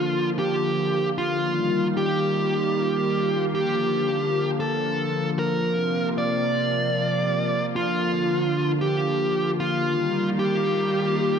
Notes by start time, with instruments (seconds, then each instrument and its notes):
Already playing: analog synth pad D3 F3 A#3 F4, lead electric guitar F4
0.39 lead electric guitar G4
1.18 lead electric guitar F4
1.44 analog synth pad D#3 G3
1.97 lead electric guitar G4
3.55 analog synth pad D3 F3, lead electric guitar G4
4.60 lead electric guitar A4
5.39 lead electric guitar A#4
5.65 analog synth pad C3 F4
6.18 lead electric guitar D5
7.76 analog synth pad D3, lead electric guitar F4
8.81 lead electric guitar G4
9.60 lead electric guitar F4
9.86 analog synth pad D#3 G3 A#3
10.39 lead electric guitar G4